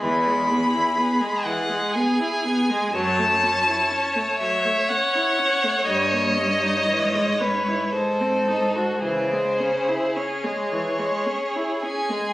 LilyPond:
<<
  \new Staff \with { instrumentName = "Violin" } { \time 3/4 \key cis \minor \tempo 4 = 60 b''4. fis''8 gis''4 | a''4. e''8 fis''4 | dis''4. b'8 bis'4 | bis'4 cis''4. gis''8 | }
  \new Staff \with { instrumentName = "Violin" } { \time 3/4 \key cis \minor gis'2. | cis''2.~ | cis''2 a'4 | gis'2~ gis'8 gis'8 | }
  \new Staff \with { instrumentName = "Viola" } { \time 3/4 \key cis \minor e16 gis16 b16 e'16 b16 gis16 e16 gis16 b16 e'16 b16 gis16 | fis16 a16 cis'16 e'16 cis'16 a16 fis16 a16 cis'16 e'16 cis'16 a16 | g16 ais16 cis'16 dis'16 e16 gis16 cis'16 e'16 gis16 bis16 dis'16 fis'16 | e16 gis16 cis'16 e'16 cis'16 gis16 e16 gis16 cis'16 e'16 cis'16 gis16 | }
  \new Staff \with { instrumentName = "Cello" } { \clef bass \time 3/4 \key cis \minor e,4 r2 | fis,4 r2 | g,4 gis,4 gis,4 | cis4 r2 | }
>>